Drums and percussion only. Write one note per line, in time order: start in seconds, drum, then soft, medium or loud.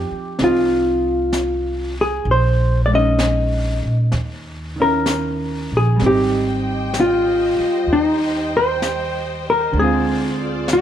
0.39 brush sweep soft
0.39 snare soft
1.33 brush sweep soft
1.33 snare soft
1.33 hi-hat pedal soft
2.26 brush sweep soft
3.19 brush sweep soft
3.19 snare soft
3.19 hi-hat pedal soft
4.12 brush sweep soft
4.12 snare soft
5.06 brush sweep soft
5.06 snare soft
5.06 hi-hat pedal soft
5.99 brush sweep soft
5.99 snare soft
6.94 brush sweep soft
6.94 snare soft
6.94 hi-hat pedal soft
7.88 brush sweep soft
8.82 brush sweep soft
8.82 snare soft
8.82 hi-hat pedal soft
9.75 brush sweep soft
10.68 brush sweep soft
10.68 snare soft
10.68 hi-hat pedal soft